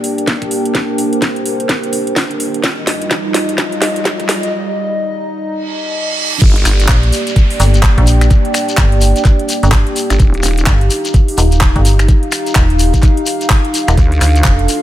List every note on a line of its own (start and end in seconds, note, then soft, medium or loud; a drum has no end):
0.00 2.60 A#3 medium
0.00 2.64 D4 medium
0.00 2.60 G4 medium
0.00 4.53 G4 medium
0.00 4.53 A#4 medium
0.00 0.73 D5 medium
0.00 3.76 G5 medium
0.00 open hi-hat loud
0.00 riser medium
0.18 closed hi-hat medium
0.27 kick loud
0.27 snare medium
0.27 closed hi-hat medium
0.42 kick medium
0.42 closed hi-hat soft
0.51 open hi-hat loud
0.65 closed hi-hat medium
0.75 2.62 C5 medium
0.75 kick loud
0.75 snare medium
0.75 closed hi-hat medium
0.98 open hi-hat loud
1.13 closed hi-hat medium
1.22 kick loud
1.22 snare medium
1.22 closed hi-hat medium
1.36 closed hi-hat soft
1.46 open hi-hat loud
1.60 closed hi-hat medium
1.69 kick loud
1.69 snare medium
1.69 closed hi-hat medium
1.83 closed hi-hat soft
1.93 open hi-hat loud
2.07 closed hi-hat medium
2.16 kick loud
2.16 snare medium
2.16 open hi-hat medium
2.31 closed hi-hat soft
2.40 open hi-hat loud
2.54 closed hi-hat medium
2.64 6.38 G3 medium
2.64 4.53 D#4 medium
2.64 4.51 F4 medium
2.64 6.38 D#5 medium
2.64 kick loud
2.64 snare medium
2.64 closed hi-hat medium
2.87 snare medium
2.87 open hi-hat loud
3.02 closed hi-hat soft
3.11 kick loud
3.11 snare medium
3.11 closed hi-hat medium
3.34 4.53 F5 medium
3.34 snare medium
3.34 open hi-hat loud
3.49 closed hi-hat medium
3.58 kick loud
3.58 snare medium
3.58 closed hi-hat medium
3.72 closed hi-hat soft
3.82 snare medium
3.82 open hi-hat loud
3.96 closed hi-hat medium
4.05 kick loud
4.05 snare medium
4.05 closed hi-hat medium
4.20 kick medium
4.20 closed hi-hat soft
4.29 snare medium
4.29 open hi-hat loud
4.43 closed hi-hat medium
4.53 6.40 D#4 medium
5.47 reverse cymbal medium
6.41 6.64 G1 loud
6.41 10.16 A#3 medium
6.41 10.20 D4 medium
6.41 13.94 G4 medium
6.41 10.16 D5 loud
6.41 kick loud
6.41 closed hi-hat medium
6.41 crash loud
6.41 downlifter medium
6.41 shekere soft
6.56 closed hi-hat soft
6.65 6.87 G1 loud
6.65 finger snap medium
6.65 open hi-hat loud
6.65 shekere loud
6.80 closed hi-hat medium
6.80 shekere soft
6.88 7.11 A#1 loud
6.88 kick loud
6.88 clap loud
6.88 closed hi-hat medium
6.88 shekere soft
7.00 11.73 G5 medium
7.00 closed hi-hat soft
7.12 open hi-hat loud
7.12 shekere medium
7.27 closed hi-hat medium
7.27 shekere soft
7.36 kick loud
7.36 closed hi-hat medium
7.36 shekere soft
7.50 open hi-hat medium
7.60 7.95 G1 medium
7.60 open hi-hat loud
7.60 shekere medium
7.74 closed hi-hat medium
7.74 shekere soft
7.83 kick loud
7.83 clap loud
7.83 closed hi-hat medium
7.98 8.29 A#1 loud
7.98 kick medium
7.98 closed hi-hat soft
8.07 open hi-hat loud
8.07 shekere loud
8.21 finger snap medium
8.21 closed hi-hat medium
8.21 shekere soft
8.30 kick loud
8.30 closed hi-hat medium
8.30 shekere soft
8.45 closed hi-hat soft
8.54 finger snap medium
8.54 open hi-hat loud
8.54 shekere loud
8.69 closed hi-hat medium
8.69 shekere medium
8.77 9.14 G1 loud
8.77 kick loud
8.77 clap loud
8.77 closed hi-hat medium
8.77 shekere soft
8.92 closed hi-hat soft
9.01 open hi-hat loud
9.01 shekere loud
9.16 closed hi-hat medium
9.16 shekere medium
9.25 kick loud
9.25 clap soft
9.25 closed hi-hat medium
9.25 shekere soft
9.39 closed hi-hat soft
9.49 open hi-hat loud
9.49 shekere loud
9.63 9.84 G1 loud
9.63 closed hi-hat medium
9.63 shekere soft
9.72 kick loud
9.72 clap loud
9.72 open hi-hat medium
9.72 shekere soft
9.87 closed hi-hat soft
9.96 open hi-hat loud
9.96 shekere medium
10.10 10.18 G1 loud
10.10 finger snap medium
10.10 closed hi-hat medium
10.10 shekere medium
10.19 10.42 D#1 loud
10.19 13.98 D#4 medium
10.19 13.94 D#4 medium
10.19 14.82 F5 medium
10.19 kick loud
10.19 closed hi-hat medium
10.19 shekere soft
10.34 closed hi-hat soft
10.43 10.65 D#1 loud
10.43 finger snap medium
10.43 open hi-hat loud
10.43 shekere medium
10.58 closed hi-hat soft
10.58 shekere medium
10.66 10.89 G1 loud
10.66 kick loud
10.66 clap loud
10.66 closed hi-hat medium
10.66 shekere soft
10.81 closed hi-hat soft
10.90 14.82 F5 medium
10.90 open hi-hat loud
10.90 shekere loud
11.05 closed hi-hat medium
11.05 shekere medium
11.14 kick loud
11.14 closed hi-hat medium
11.14 shekere soft
11.28 open hi-hat medium
11.38 11.73 D#1 loud
11.38 open hi-hat loud
11.38 shekere medium
11.52 closed hi-hat medium
11.52 shekere medium
11.61 kick loud
11.61 clap loud
11.61 closed hi-hat medium
11.61 shekere soft
11.76 12.07 G1 loud
11.76 kick medium
11.76 closed hi-hat soft
11.85 open hi-hat loud
11.85 shekere loud
11.99 finger snap medium
11.99 closed hi-hat medium
11.99 shekere medium
12.08 kick loud
12.08 closed hi-hat medium
12.08 shekere soft
12.23 closed hi-hat soft
12.32 finger snap medium
12.32 open hi-hat loud
12.32 shekere loud
12.47 closed hi-hat soft
12.47 shekere soft
12.55 12.91 D#1 loud
12.55 kick loud
12.55 clap loud
12.55 closed hi-hat medium
12.55 shekere soft
12.70 closed hi-hat soft
12.79 open hi-hat loud
12.79 shekere loud
12.94 kick medium
12.94 closed hi-hat medium
12.94 shekere medium
13.02 kick loud
13.02 clap soft
13.02 closed hi-hat medium
13.02 shekere soft
13.17 closed hi-hat soft
13.26 open hi-hat loud
13.26 shekere loud
13.41 closed hi-hat medium
13.41 shekere medium
13.50 kick loud
13.50 clap loud
13.50 open hi-hat medium
13.50 shekere soft
13.65 closed hi-hat soft
13.74 open hi-hat loud
13.74 shekere medium
13.88 13.96 D#1 loud
13.88 finger snap medium
13.88 closed hi-hat medium
13.88 shekere medium
13.97 14.20 D2 loud
13.97 14.82 D4 medium
13.97 14.82 A4 medium
13.97 kick loud
13.97 closed hi-hat medium
13.97 shekere soft
14.08 14.82 F4 medium
14.08 closed hi-hat soft
14.21 14.43 D2 loud
14.21 14.82 A4 medium
14.21 finger snap medium
14.21 open hi-hat loud
14.21 shekere medium
14.35 closed hi-hat soft
14.35 shekere soft
14.44 14.67 F1 medium
14.44 kick loud
14.44 clap loud
14.44 closed hi-hat medium
14.44 shekere soft
14.59 closed hi-hat soft
14.68 open hi-hat loud
14.68 shekere medium